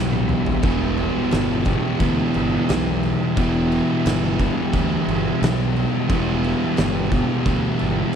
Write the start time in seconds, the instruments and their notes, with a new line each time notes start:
Already playing: fingered electric bass B1, distorted electric guitar E2 B2 E3 G3 B3 E4, tonewheel organ G4 E5 B5
0.12 high tom
0.29 mid tom
0.46 floor tom
0.63 fingered electric bass E1, distorted electric guitar E2 B2 E3 G3 B3, tonewheel organ A5, kick, crash
0.67 distorted electric guitar E3 E4
0.97 crash
1.31 fingered electric bass G1, snare, crash
1.64 distorted electric guitar E2 B2 E3, kick, crash
2.00 fingered electric bass D2, distorted electric guitar E3 G3 B3 E4, kick, crash
2.34 fingered electric bass G1, crash
2.69 fingered electric bass B1, snare, crash
3.03 crash
3.36 fingered electric bass E1, distorted electric guitar E2 B2 E3 G3 B3 E4, kick, crash
3.72 crash
4.06 fingered electric bass G1, snare, crash
4.38 distorted electric guitar B2 E3, kick, crash
4.42 distorted electric guitar E2
4.72 fingered electric bass D2, distorted electric guitar E3 G3 B3 E4, kick, crash
5.07 fingered electric bass G1, crash
5.42 fingered electric bass B1, snare, crash
5.76 crash
6.08 fingered electric bass E1, distorted electric guitar E2 B2 E3 G3, kick, crash
6.12 distorted electric guitar E3 B3 E4
6.44 crash
6.77 fingered electric bass G1, snare, crash
7.11 distorted electric guitar E2 B2 E3, kick, crash
7.46 fingered electric bass D2, distorted electric guitar E3 G3 B3 E4, kick, crash
7.79 fingered electric bass G1, crash